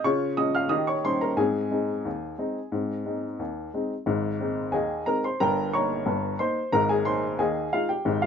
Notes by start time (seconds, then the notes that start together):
0.04 C#3 F4 C#5 C#6
0.37 G#3 C#4 F4 D#5 D#6
0.55 F5 F6
0.69 D#3 G4 D#5 D#6
0.87 C#5 C#6
1.05 G3 C#4 D#4 C5 C6
1.21 A#4 A#5
1.37 G#2 C4 G#4 G#5
1.71 G#3 C4 D#4
2.05 D#2
2.38 G#3 C4 D#4
2.72 G#2 C4
3.06 G#3 C4 D#4
3.39 D#2
3.74 G#3 C4 D#4
4.06 G#1 G#2
4.40 G#3 C4 D#4
4.72 D#2 D#3 G#4 D#5 G#5
5.06 G#3 C4 D#4 A#4 A#5
5.24 C5 C6
5.40 G1 G2 A#4 G5 A#5
5.73 A#3 D#4 C#5 A#5 C#6
6.06 G1 G2
6.39 A#3 D#4 C5 C6
6.72 G#1 G#2 A#4 A#5
6.89 G#4 G#5
7.05 G#3 D#4 C5 C6
7.39 D#2 D#3 G#4 D#5 G#5
7.73 G#3 D#4 F4 F5
7.89 G4 G5
8.05 G#1 G#2
8.22 F5